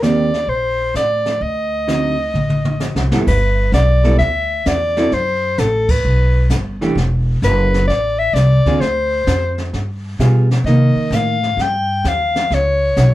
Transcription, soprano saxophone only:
0.03 0.51 D5 medium
0.49 0.95 C5 medium
0.97 1.44 D5 medium
1.43 3.12 D#5 medium
3.28 3.71 B4 medium
3.74 4.17 D5 medium
4.18 4.69 E5 medium
4.67 5.15 D5 medium
5.13 5.61 C5 medium
5.59 5.92 A4 medium
5.91 6.51 B4 medium
7.45 7.87 B4 medium
7.88 8.20 D5 medium
8.19 8.36 E5 loud
8.34 8.82 D5 medium
8.81 9.73 C5 medium
10.66 11.16 D#5 medium
11.15 11.63 F5 loud
11.61 12.10 G5 medium
12.08 12.56 F5 medium
12.54 13.14 C#5 medium

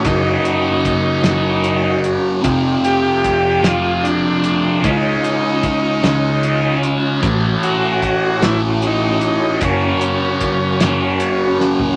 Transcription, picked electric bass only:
0.05 0.36 F#1 medium
1.24 2.17 F#1 medium
2.45 2.75 F1 medium
3.63 4.56 F1 medium
4.84 5.15 C#2 medium
6.03 6.96 C#2 medium
7.23 7.54 A1 medium
8.42 9.35 A1 medium
9.62 9.93 F#1 medium
10.81 11.74 F#1 medium

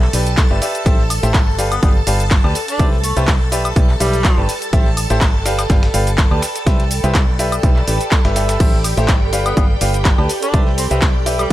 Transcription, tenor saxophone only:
1.72 1.79 B3 medium
1.83 1.91 B3 medium
2.68 2.86 D4 loud
3.04 3.12 A3 medium
3.17 3.24 A3 medium
4.00 4.49 G3 medium
9.46 9.53 B3 medium
9.57 9.65 B3 medium
10.43 10.61 D4 loud
10.78 10.86 C4 medium
10.91 10.98 C4 medium
11.39 11.46 G3 medium

